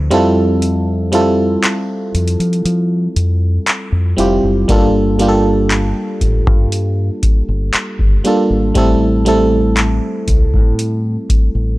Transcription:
0.00 0.11 D2 medium
0.10 1.55 F2 medium
0.10 1.06 G3 medium
0.10 1.06 C4 medium
0.10 1.07 E4 medium
0.10 1.07 F4 medium
0.10 1.08 A4 loud
0.10 closed hi-hat medium
0.62 closed hi-hat medium
1.12 3.03 G3 medium
1.12 3.03 C4 medium
1.12 3.04 E4 medium
1.12 3.04 F4 medium
1.12 3.04 A4 loud
1.12 closed hi-hat medium
1.63 clap loud
1.63 closed hi-hat medium
2.14 2.35 F2 medium
2.14 closed hi-hat medium
2.28 closed hi-hat soft
2.39 2.60 F3 medium
2.39 closed hi-hat soft
2.53 closed hi-hat soft
2.65 3.07 F3 loud
2.65 closed hi-hat medium
3.16 3.57 F2 medium
3.16 closed hi-hat medium
3.67 clap loud
3.67 closed hi-hat medium
3.92 4.13 F2 medium
4.17 4.38 F1 medium
4.17 4.65 G3 medium
4.17 4.65 C4 medium
4.17 4.66 E4 medium
4.17 4.66 F4 medium
4.17 4.67 G4 medium
4.17 closed hi-hat medium
4.43 4.64 F#1 medium
4.68 5.92 G1 loud
4.68 5.16 G3 medium
4.68 5.16 A#3 medium
4.68 5.17 D4 medium
4.68 5.17 F4 medium
4.68 5.18 A4 medium
4.68 kick loud
4.68 closed hi-hat medium
5.19 7.10 G3 medium
5.19 7.10 A#3 medium
5.19 7.11 D4 medium
5.19 7.11 F4 medium
5.19 5.27 G4 medium
5.19 closed hi-hat medium
5.28 7.15 A4 loud
5.70 clap loud
5.70 closed hi-hat medium
6.21 6.47 A1 medium
6.21 kick medium
6.21 closed hi-hat medium
6.47 7.09 G2 medium
6.47 kick medium
6.72 closed hi-hat medium
7.23 muted fingered electric bass stroke soft
7.23 kick medium
7.23 closed hi-hat medium
7.48 7.69 G1 medium
7.73 clap loud
7.73 closed hi-hat medium
7.99 8.20 G1 medium
7.99 kick medium
8.24 8.72 G3 medium
8.24 8.72 A#3 medium
8.24 8.73 D4 medium
8.24 8.73 F4 medium
8.24 8.74 A4 medium
8.24 closed hi-hat medium
8.50 8.71 G#1 medium
8.75 9.99 A1 medium
8.75 9.23 G3 medium
8.75 9.23 A3 medium
8.75 9.23 C4 medium
8.75 9.24 E4 medium
8.75 9.24 A4 loud
8.75 kick loud
8.75 closed hi-hat medium
9.25 11.16 G3 medium
9.25 11.17 A3 medium
9.25 11.17 C4 medium
9.25 11.17 E4 medium
9.25 11.18 A4 medium
9.25 closed hi-hat medium
9.77 clap loud
9.77 closed hi-hat medium
10.28 10.55 C2 medium
10.28 kick medium
10.28 closed hi-hat medium
10.54 11.16 A2 loud
10.54 kick medium
10.79 closed hi-hat medium
11.30 muted fingered electric bass stroke soft
11.30 kick medium
11.30 closed hi-hat medium
11.55 11.76 A1 medium

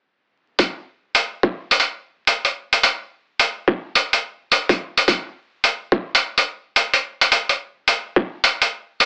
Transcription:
0.59 kick loud
0.59 closed hi-hat medium
1.15 closed hi-hat medium
1.43 kick medium
1.71 closed hi-hat medium
1.80 closed hi-hat soft
2.27 closed hi-hat medium
2.45 closed hi-hat soft
2.73 closed hi-hat soft
2.83 closed hi-hat medium
3.40 closed hi-hat medium
3.68 kick loud
3.95 closed hi-hat medium
4.13 closed hi-hat medium
4.52 closed hi-hat medium
4.69 kick loud
4.69 closed hi-hat soft
4.98 closed hi-hat medium
5.08 kick loud
5.08 closed hi-hat medium
5.64 closed hi-hat medium
5.92 kick loud
6.15 closed hi-hat medium
6.38 closed hi-hat soft
6.76 closed hi-hat medium
6.94 closed hi-hat soft
7.21 closed hi-hat soft
7.32 closed hi-hat medium
7.49 closed hi-hat soft
7.88 closed hi-hat medium
8.16 kick loud
8.44 closed hi-hat medium
8.62 closed hi-hat soft
9.00 closed hi-hat medium

